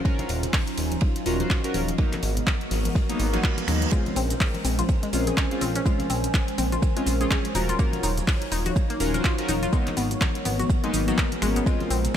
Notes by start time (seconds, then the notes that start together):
Already playing: F#3 C#4 D#4 F4 A#4 C5 G#5
0.05 C#4 F4 F#4 A#4, kick, ride
0.14 F5
0.19 snare, closed hi-hat, muted conga, high conga, low conga
0.29 D#1, open hi-hat, ride
0.43 snare, closed hi-hat, low conga
0.53 D#5, kick, snare, clap, open hi-hat, muted conga, high conga
0.67 closed hi-hat
0.77 D#1, open hi-hat, ride
0.92 closed hi-hat, high conga
1.01 kick, ride, muted conga
1.15 snare, closed hi-hat
1.26 D#1 C#4 F4 F#4 A#4, open hi-hat, ride
1.39 C#4 F4 F#4 C5, snare, closed hi-hat, muted conga, high conga
1.50 kick, snare, clap, ride
1.64 C#4 F4 F#4 A#4, closed hi-hat
1.74 D#1, open hi-hat, ride, high conga
1.88 closed hi-hat, muted conga
1.98 F#3 G#3 A#3 B3 D#4 F#4 A#4, kick, ride
2.13 snare, clap, closed hi-hat, high conga, low conga
2.22 G#1 G#4, open hi-hat, ride, muted conga
2.37 A#4, closed hi-hat, low conga
2.46 F#5, kick, snare, clap, ride, high conga
2.61 closed hi-hat
2.71 G#1, snare, open hi-hat, muted conga
2.85 closed hi-hat, high conga
2.95 kick, snare, ride, reverse cymbal
3.09 F#3 A#3 B3 D#4, closed hi-hat, muted conga
3.20 G#1, open hi-hat, ride
3.33 F#3 A#3 B3 D#4, snare, closed hi-hat, ride, high conga
3.43 F#3 A#3 B3 F4, kick, clap
3.58 closed hi-hat, ride, muted conga
3.68 D#2 F#3 A#3 B3 D#4, finger snap, open hi-hat, ride, high conga, low conga
3.82 closed hi-hat
3.92 G#3 C4 C#4 F4 A#4 C5, kick, ride, shaker
4.06 snare, closed hi-hat, muted conga, high conga, low conga
4.16 A#1 C4, open hi-hat, ride, shaker
4.30 snare, closed hi-hat, low conga, shaker
4.39 G#5, kick, snare, clap, open hi-hat, high conga, shaker
4.45 C5
4.54 closed hi-hat, muted conga
4.65 A#1 C4, snare, open hi-hat, ride, shaker
4.79 F4, closed hi-hat, high conga, shaker
4.89 kick, ride, muted conga, shaker
5.03 G#3, snare, closed hi-hat
5.13 A#1 G#3 C4 C#4 F4, open hi-hat, ride, shaker
5.27 G#3 C4 C#4 G#4, snare, closed hi-hat, high conga, shaker
5.37 C#4, kick, snare, clap, ride, muted conga, shaker
5.51 G#3 C4 C#4 F4, closed hi-hat
5.61 A#1 C4, open hi-hat, ride, high conga, shaker
5.75 C#4, closed hi-hat, muted conga, shaker
5.85 G#3 C4 C#4 F4, kick, ride, shaker
6.00 snare, closed hi-hat, high conga, low conga
6.10 A#1 C4, open hi-hat, ride, shaker
6.24 closed hi-hat, muted conga, shaker
6.34 kick, snare, clap, ride, high conga, shaker
6.48 closed hi-hat
6.58 A#1 C4, open hi-hat, ride, muted conga, shaker
6.72 F4, closed hi-hat, high conga, shaker
6.82 kick, ride, shaker
6.96 G#3 C4 C#4 F4, closed hi-hat
7.06 A#1, open hi-hat, ride, muted conga, shaker
7.20 G#3 C4 C#4 F4 G#4, closed hi-hat, high conga, shaker
7.30 G#3 C4 C#4 G#4, kick, snare, clap, ride, shaker
7.44 closed hi-hat, muted conga
7.55 D#1 F#3 C#4 D#4 F4 F#4 A#4 C#5, open hi-hat, ride, high conga, low conga, shaker
7.69 F4, closed hi-hat, shaker
7.79 A#3 C#4 F4 F#4 A#4 F5, kick, ride, shaker
7.84 F#3 C#5
7.93 snare, closed hi-hat, muted conga, high conga, low conga
8.03 D#1 D#4, open hi-hat, ride, shaker
8.17 snare, closed hi-hat, low conga, shaker
8.27 kick, snare, clap, open hi-hat, muted conga, high conga, shaker
8.42 closed hi-hat
8.52 D#1 D#4, snare, open hi-hat, ride, shaker
8.66 F#4, closed hi-hat, high conga, shaker
8.76 kick, ride, muted conga, shaker
8.90 A#3, snare, closed hi-hat
9.00 D#1 C#4 F4 F#4 A#4, open hi-hat, ride, shaker
9.14 C#4 F4 F#4 A#4 C5, snare, closed hi-hat, muted conga, high conga, shaker
9.24 F4, kick, snare, clap, ride, shaker
9.38 C#4 F4 F#4 A#4, closed hi-hat
9.49 D#1 D#4, open hi-hat, ride, high conga, shaker
9.63 F4, closed hi-hat, muted conga, shaker
9.73 F#3 G#3 A#3 B3 D#4 F#4 A#4, kick, ride, shaker
9.87 snare, clap, closed hi-hat, high conga, low conga
9.97 G#1 B3, open hi-hat, ride, muted conga, shaker
10.10 G#4, closed hi-hat, shaker
10.21 kick, snare, clap, ride, high conga, shaker
10.27 A#4
10.35 closed hi-hat
10.45 G#1 B3, open hi-hat, ride, muted conga, shaker
10.59 F#4, closed hi-hat, high conga, shaker
10.70 kick, ride, shaker
10.83 F#3 G#3 A#3 B3 D#4, closed hi-hat, muted conga
10.94 G#1, open hi-hat, ride, shaker
11.08 F#3 A#3 B3 D#4 F#4, closed hi-hat, high conga, shaker
11.18 D#4, kick, snare, clap, ride, shaker
11.32 closed hi-hat, muted conga
11.42 G#1 F#3 G#3 A#3 B3 C#4, finger snap, open hi-hat, ride, high conga, low conga, shaker
11.56 B3, closed hi-hat, shaker
11.66 G#3 C4 C#4 F4 C5, kick, ride, shaker
11.80 snare, closed hi-hat, muted conga, high conga, low conga
11.90 A#1 C4, open hi-hat, ride, shaker
12.04 snare, closed hi-hat, low conga, shaker